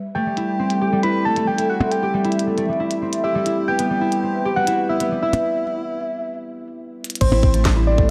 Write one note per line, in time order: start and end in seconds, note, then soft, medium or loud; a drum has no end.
0.00 5.44 G3 medium
0.00 1.56 B4 medium
0.00 0.15 E5 medium
0.15 1.25 A3 medium
0.15 0.99 G5 loud
0.22 4.28 A4 medium
0.26 0.91 G3 medium
0.37 1.03 E4 medium
0.37 closed hi-hat medium
0.59 1.80 C4 medium
0.70 5.45 E5 loud
0.70 closed hi-hat medium
0.81 2.02 G4 loud
0.92 1.46 G3 medium
1.03 1.58 E4 medium
1.03 1.27 B5 loud
1.03 closed hi-hat soft
1.25 1.36 A3 medium
1.25 1.49 A5 loud
1.36 2.46 A3 loud
1.36 closed hi-hat medium
1.47 2.12 G3 medium
1.47 1.71 G5 medium
1.58 2.24 E4 medium
1.58 closed hi-hat medium
1.70 1.93 F#5 medium
1.81 3.02 C4 medium
1.81 percussion blips medium
1.92 2.36 G5 medium
1.92 closed hi-hat medium
2.03 3.24 G4 medium
2.14 2.68 G3 medium
2.25 2.79 E4 loud
2.25 closed hi-hat soft
2.32 closed hi-hat medium
2.39 closed hi-hat medium
2.47 2.57 A3 medium
2.58 5.91 A3 medium
2.58 closed hi-hat soft
2.69 3.34 G3 medium
2.80 3.46 E4 medium
2.91 closed hi-hat medium
3.02 3.74 C4 medium
3.13 closed hi-hat medium
3.24 4.45 G4 medium
3.24 3.69 E5 loud
3.35 3.73 G3 loud
3.46 4.01 E4 loud
3.46 closed hi-hat medium
3.68 3.79 B3 medium
3.68 4.58 G5 loud
3.79 4.29 B3 medium
3.79 closed hi-hat medium
3.90 4.55 G3 medium
4.01 4.67 E4 loud
4.12 5.44 B4 medium
4.12 closed hi-hat soft
4.23 4.95 C4 medium
4.45 6.81 G4 medium
4.56 5.10 G3 medium
4.56 4.91 F#5 loud
4.67 5.22 E4 medium
4.67 closed hi-hat medium
4.89 5.00 B3 medium
4.89 5.22 E5 medium
5.00 7.49 B3 medium
5.00 closed hi-hat medium
5.11 7.26 G3 medium
5.22 7.32 E4 medium
5.22 6.73 E5 loud
5.33 closed hi-hat medium
5.33 percussion blips loud
7.04 closed hi-hat medium
7.10 closed hi-hat medium
7.15 closed hi-hat medium
7.21 8.10 A1 medium
7.21 7.62 C5 loud
7.21 kick loud
7.21 closed hi-hat medium
7.21 crash loud
7.32 7.76 E4 medium
7.32 percussion blips medium
7.43 7.87 C4 medium
7.43 8.10 A4 medium
7.43 kick loud
7.54 7.98 A3 medium
7.54 closed hi-hat medium
7.65 8.10 G3 medium
7.65 kick loud
7.65 snare loud
7.65 closed hi-hat medium
7.65 percussion blips medium
7.76 8.10 E4 medium
7.87 8.10 C4 medium
7.87 8.08 D5 medium
7.98 8.10 A3 medium
7.98 kick loud